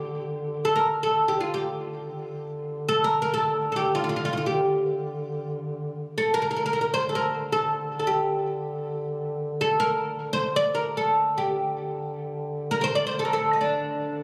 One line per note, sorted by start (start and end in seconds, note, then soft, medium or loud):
0.00 2.11 D3 medium
0.65 0.75 A4 medium
0.76 1.02 A#4 medium
1.03 1.28 A4 medium
1.28 1.39 G4 medium
1.41 1.54 F4 medium
1.54 2.50 G4 medium
2.11 6.17 D3 medium
2.89 3.04 A4 medium
3.04 3.21 A#4 medium
3.22 3.33 A#4 medium
3.34 3.71 A4 medium
3.72 3.76 A4 medium
3.76 3.94 G4 medium
3.95 4.02 F4 medium
4.04 4.08 F4 medium
4.09 4.15 F4 medium
4.16 4.24 F4 medium
4.25 4.32 F4 medium
4.33 4.36 F4 medium
4.37 4.45 F4 soft
4.46 5.51 G4 medium
6.18 6.34 A4 medium
6.34 10.51 D3 medium
6.34 6.41 A#4 medium
6.42 6.49 A#4 medium
6.51 6.55 A#4 medium
6.56 6.64 A#4 medium
6.66 6.72 A#4 medium
6.73 6.80 A#4 medium
6.81 6.88 A#4 medium
6.94 7.08 C5 medium
7.09 7.15 A4 medium
7.15 7.52 A#4 medium
7.52 7.98 A4 medium
7.99 8.05 A4 soft
8.07 9.07 G4 medium
9.61 9.79 A4 medium
9.80 10.32 A#4 medium
10.33 10.56 C5 medium
10.52 14.23 D3 medium
10.56 10.73 D5 medium
10.75 10.98 A#4 medium
10.97 11.37 A4 medium
11.38 12.13 G4 medium
12.71 12.80 A#4 medium
12.81 12.83 A#4 medium
12.81 12.94 C5 medium
12.95 13.06 D5 medium
13.07 13.19 C5 medium
13.19 13.24 A4 medium
13.25 13.32 A#4 medium
13.33 13.61 A4 medium
13.53 13.60 D#4 soft
13.61 14.23 D4 medium